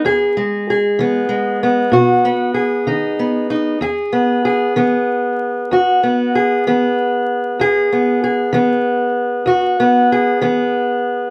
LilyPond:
\new Staff \with { instrumentName = "Steel-string acoustic guitar" } { \time 12/8 \key e \major \tempo 4. = 64 << { gis'8 gis8 gis'8 b8 gis8 b8 fis'8 b8 gis'8 dis'8 b8 dis'8 | gis'8 b8 gis'8 b4. fis'8 b8 gis'8 b4. | gis'8 b8 gis'8 b4. fis'8 b8 gis'8 b4. | } \\ { e,4 r8 e4 r8 b,4 r8 dis4 r8 | e,4 r8 e4 r8 e,4 r8 e4 r8 | e,4 r8 e4 r8 e,4 r8 e4 r8 | } >> }